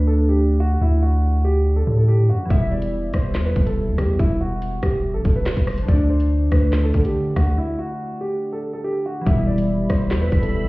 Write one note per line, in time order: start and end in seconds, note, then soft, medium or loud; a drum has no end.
0.00 0.77 D2 loud
0.00 2.44 D3 medium
0.00 2.47 A3 medium
0.00 2.49 D4 medium
0.07 0.27 A4 medium
0.29 0.58 G4 medium
0.60 0.80 F#4 medium
0.81 1.83 D2 loud
0.81 1.01 E4 medium
1.03 1.42 F#4 medium
1.45 1.74 G4 medium
1.76 1.96 A4 medium
1.87 2.31 A2 loud
1.97 2.07 A4 medium
2.08 2.28 G4 medium
2.29 2.49 F#2 loud
2.29 2.49 F#4 medium
2.45 5.82 E3 medium
2.45 5.84 G3 medium
2.50 3.11 E1 loud
2.50 5.86 B2 medium
2.50 2.70 E5 medium
2.50 kick loud
2.50 closed hi-hat medium
2.56 5.87 E4 medium
2.71 3.11 D5 medium
2.82 closed hi-hat medium
3.14 3.36 E1 loud
3.14 3.43 C5 medium
3.14 kick medium
3.14 cross-stick loud
3.14 closed hi-hat medium
3.35 3.55 E2 medium
3.35 snare loud
3.35 clap medium
3.46 3.65 B4 medium
3.56 3.89 E1 loud
3.56 kick loud
3.56 closed hi-hat medium
3.66 3.96 A4 medium
3.66 closed hi-hat medium
3.88 3.98 E2 loud
3.98 4.19 E2 loud
3.98 4.18 G4 medium
3.98 kick medium
3.98 cross-stick loud
3.98 closed hi-hat medium
4.19 4.80 E1 loud
4.19 4.39 E4 medium
4.19 kick loud
4.19 closed hi-hat medium
4.41 4.80 F#4 medium
4.62 closed hi-hat medium
4.83 5.16 E1 loud
4.83 5.13 G4 medium
4.83 kick medium
4.83 cross-stick loud
4.83 closed hi-hat medium
5.14 5.25 B1 loud
5.14 5.34 A4 medium
5.25 5.55 E1 loud
5.25 kick loud
5.25 closed hi-hat medium
5.36 5.65 B4 medium
5.46 snare loud
5.46 clap loud
5.57 5.79 E1 loud
5.57 kick medium
5.57 closed hi-hat medium
5.67 5.87 C5 medium
5.67 cross-stick loud
5.67 open hi-hat medium
5.78 5.88 B1 loud
5.78 closed hi-hat loud
5.83 9.20 D3 medium
5.88 6.49 D2 loud
5.88 9.23 A3 medium
5.88 6.08 D5 medium
5.88 kick loud
5.88 closed hi-hat medium
5.94 9.25 D4 medium
6.10 6.49 C5 medium
6.20 closed hi-hat medium
6.52 6.92 D2 loud
6.52 6.82 B4 medium
6.52 kick medium
6.52 cross-stick loud
6.52 closed hi-hat medium
6.73 snare loud
6.73 clap medium
6.84 7.03 A4 medium
6.94 7.35 D3 loud
6.94 kick loud
6.94 closed hi-hat medium
7.05 7.35 G4 medium
7.05 closed hi-hat medium
7.36 7.57 D2 loud
7.36 7.56 F#4 medium
7.36 kick medium
7.36 cross-stick loud
7.36 closed hi-hat medium
7.58 7.77 E4 medium
7.79 8.18 F#4 medium
8.21 8.51 G4 medium
8.53 8.72 A4 medium
8.73 8.83 A4 medium
8.84 9.04 G4 medium
9.06 9.25 F#4 medium
9.21 10.69 E3 medium
9.21 10.69 G3 medium
9.26 9.87 E1 loud
9.26 10.69 B2 medium
9.26 10.69 G3 medium
9.26 10.69 E5 medium
9.26 9.46 E5 medium
9.26 10.69 B5 medium
9.26 kick loud
9.26 closed hi-hat medium
9.32 10.69 E4 medium
9.47 9.87 D5 medium
9.58 closed hi-hat medium
9.90 10.13 E1 loud
9.90 10.20 C5 medium
9.90 kick medium
9.90 cross-stick loud
9.90 closed hi-hat medium
10.11 10.31 E2 loud
10.11 snare loud
10.11 clap medium
10.22 10.41 B4 medium
10.32 10.65 E1 loud
10.32 kick loud
10.32 closed hi-hat medium
10.42 10.69 A4 medium
10.42 closed hi-hat medium
10.64 10.69 E2 loud